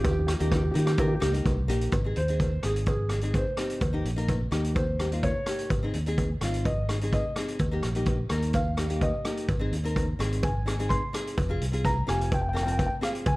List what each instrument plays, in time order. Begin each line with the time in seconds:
0.04 fingered electric bass D#2, felt piano G4, kick, closed hi-hat, cowbell
0.11 felt piano G4
0.19 felt piano G4
0.27 felt piano G4, cross-stick, closed hi-hat
0.39 fingered electric bass D#2, nylon-string guitar A#3 D#4 G4, felt piano G4, closed hi-hat
0.48 felt piano G4
0.52 kick, cross-stick, closed hi-hat, cowbell
0.56 felt piano G4
0.63 felt piano G4
0.71 nylon-string guitar A#3 D#4, felt piano G4, closed hi-hat
0.75 fingered electric bass D#3, nylon-string guitar G4, felt piano G4
0.86 felt piano G4, cross-stick, closed hi-hat
0.92 felt piano G4
0.98 nylon-string guitar A#3 D#4 A#4, felt piano G4, kick, closed hi-hat, cowbell
1.08 felt piano G4
1.14 felt piano G4
1.20 fingered electric bass C#2, nylon-string guitar A#3 D#4 G4, felt piano G4, cross-stick, closed hi-hat
1.32 nylon-string guitar A#3 D#4 G4, closed hi-hat
1.45 fingered electric bass C2, kick, closed hi-hat, cowbell
1.68 fingered electric bass A#1, nylon-string guitar A#3 D#4 G4, closed hi-hat
1.81 closed hi-hat
1.92 fingered electric bass G#1, kick, closed hi-hat, cowbell
2.04 nylon-string guitar C4 D#4 G#4
2.16 fingered electric bass D#2, felt piano C5, closed hi-hat
2.28 nylon-string guitar C4 D#4 G#4, closed hi-hat
2.40 kick, closed hi-hat, cowbell
2.63 fingered electric bass G#1, nylon-string guitar C4 D#4 G#4, felt piano G#4, cross-stick, closed hi-hat
2.76 closed hi-hat
2.86 felt piano G#4, kick, closed hi-hat, cowbell
3.09 nylon-string guitar C4 D#4 G#4, cross-stick, closed hi-hat
3.21 nylon-string guitar C4 D#4 G#4, closed hi-hat
3.34 felt piano C5, kick, closed hi-hat, cowbell
3.57 nylon-string guitar C4 D#4 G4, cross-stick, closed hi-hat
3.70 closed hi-hat
3.81 fingered electric bass D#2, kick, closed hi-hat, cowbell
3.93 nylon-string guitar A#3 D#4 G4
4.04 fingered electric bass A#1, closed hi-hat
4.16 nylon-string guitar A#3 D#4 A#4, closed hi-hat
4.28 kick, closed hi-hat, cowbell
4.51 fingered electric bass D#2, nylon-string guitar A#3 D#4 G4, cross-stick, closed hi-hat
4.64 closed hi-hat
4.75 felt piano C5, kick, closed hi-hat, cowbell
4.99 nylon-string guitar A#3 D#4 G4, cross-stick, closed hi-hat
5.12 nylon-string guitar A#3 D#4 F4, closed hi-hat
5.23 felt piano C#5, kick, closed hi-hat, cowbell
5.46 nylon-string guitar A#3 D#4 G4, cross-stick, closed hi-hat
5.59 closed hi-hat
5.70 fingered electric bass G#1, kick, closed hi-hat, cowbell
5.83 nylon-string guitar C4 D#4 G#4
5.94 fingered electric bass D#2, closed hi-hat
6.06 nylon-string guitar C4 D#4 G#4, closed hi-hat
6.18 kick, closed hi-hat, cowbell
6.41 fingered electric bass G#1, nylon-string guitar C4 D#4 F4, cross-stick, closed hi-hat
6.54 closed hi-hat
6.65 felt piano D#5, kick, closed hi-hat, cowbell
6.89 nylon-string guitar C4 D#4 G#4, cross-stick, closed hi-hat
7.01 nylon-string guitar C4 D#4 G#4, closed hi-hat
7.13 felt piano D#5, kick, closed hi-hat, cowbell
7.36 nylon-string guitar C4 D#4 G#4, cross-stick, closed hi-hat
7.48 closed hi-hat
7.59 fingered electric bass D#2, kick, closed hi-hat, cowbell
7.71 nylon-string guitar A#3 D#4 G4
7.83 fingered electric bass A#1, cross-stick, closed hi-hat
7.95 nylon-string guitar A#3 D#4 G4, closed hi-hat
8.06 kick, closed hi-hat, cowbell
8.29 fingered electric bass D#2, nylon-string guitar A#3 D#4 A#4, cross-stick, closed hi-hat
8.42 closed hi-hat
8.53 felt piano F5, kick, closed hi-hat, cowbell
8.77 nylon-string guitar A#3 D#4 G4, cross-stick, closed hi-hat
8.89 nylon-string guitar A#3 D#4 G4, closed hi-hat
9.01 felt piano D#5, kick, closed hi-hat, cowbell
9.25 nylon-string guitar A#3 D#4 G4, cross-stick, closed hi-hat
9.37 closed hi-hat
9.48 fingered electric bass G#1, kick, closed hi-hat, cowbell
9.59 nylon-string guitar C4 D#4 G#4
9.72 fingered electric bass D#2, closed hi-hat
9.84 nylon-string guitar C4 D#4 A#4, closed hi-hat
9.96 kick, closed hi-hat, cowbell
10.19 fingered electric bass G#1, nylon-string guitar C4 D#4 G#4, cross-stick, closed hi-hat
10.32 closed hi-hat
10.43 felt piano G#5, kick, closed hi-hat, cowbell
10.66 nylon-string guitar C4 D#4 G#4, cross-stick, closed hi-hat
10.79 nylon-string guitar C4 D#4 G#4, closed hi-hat
10.89 felt piano C6, kick, closed hi-hat, cowbell
11.13 nylon-string guitar C4 D#4 G#4, cross-stick, closed hi-hat
11.27 closed hi-hat
11.38 fingered electric bass F1, kick, closed hi-hat, cowbell
11.49 nylon-string guitar C4 F4 G#4
11.61 fingered electric bass C2, closed hi-hat
11.72 nylon-string guitar C4 F4 G#4, closed hi-hat
11.85 felt piano A#5, kick, closed hi-hat, cowbell
12.07 fingered electric bass F1, nylon-string guitar C4 F4 G4, felt piano G#5, cross-stick, closed hi-hat
12.21 closed hi-hat
12.32 felt piano G5, kick, closed hi-hat, cowbell
12.41 felt piano G5
12.49 felt piano G5
12.53 nylon-string guitar C4 F4 A#4, felt piano G5, cross-stick, closed hi-hat
12.63 nylon-string guitar C4 F4 A#4, felt piano G5
12.68 felt piano G5, closed hi-hat
12.78 felt piano G5, kick, closed hi-hat, cowbell
12.86 felt piano G5
13.01 nylon-string guitar C4 F4 G#4, felt piano F5, cross-stick, closed hi-hat
13.15 closed hi-hat
13.26 fingered electric bass C#2, felt piano G#5, kick, closed hi-hat, cowbell